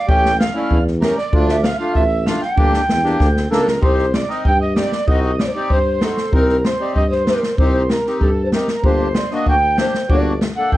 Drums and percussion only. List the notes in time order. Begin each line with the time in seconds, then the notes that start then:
0.09 kick
0.25 snare
0.40 snare
0.71 kick
0.87 snare
1.02 snare
1.18 snare
1.33 kick
1.48 snare
1.64 snare
1.95 kick
2.27 snare
2.42 snare
2.58 kick
2.74 snare
2.89 snare
3.05 snare
3.20 kick, snare
3.36 snare
3.52 snare
3.68 snare
3.83 kick
3.98 snare
4.14 snare
4.30 snare
4.45 kick
4.76 snare
4.92 snare
5.08 kick
5.39 snare
5.70 kick
6.01 snare
6.17 snare
6.33 kick
6.49 snare
6.65 snare
6.96 kick
7.12 snare
7.27 snare
7.43 snare
7.58 kick
7.90 snare
8.06 snare
8.21 kick
8.52 snare
8.68 snare
8.84 kick
9.15 snare
9.31 snare
9.46 kick
9.78 snare
9.94 snare
10.10 kick
10.41 snare
10.72 kick